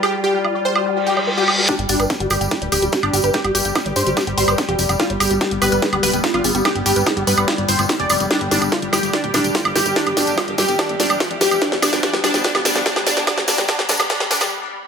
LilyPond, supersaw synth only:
\new Staff \with { instrumentName = "Supersaw synth" } { \time 4/4 \key g \major \tempo 4 = 145 g'16 r16 g'8 r8 c''8 r8 g'16 r8 g'16 r8 | d'16 r16 d'8 r8 g'8 r8 g'16 r8 d'16 r8 | g'16 r16 g'8 r8 c''8 r8 c''16 r8 g'16 r8 | f'16 r16 g'8 r8 b'8 r8 b'16 r8 f'16 r8 |
g'16 r16 g'8 r8 b'8 r8 c''16 r8 d''16 r8 | d'16 r16 d'8 r8 g'8 d'16 r16 d'8 r8 g'8 | d'16 r16 d'8 r8 g'8 d'16 r16 d'8 r8 g'8 | d'16 r16 d'8 d'16 r16 d'8 d'16 r16 d'8 d'16 r16 d'8 |
d'16 r16 d'16 r16 d'16 r16 d'16 r16 d'16 r16 d'16 r4 r16 | }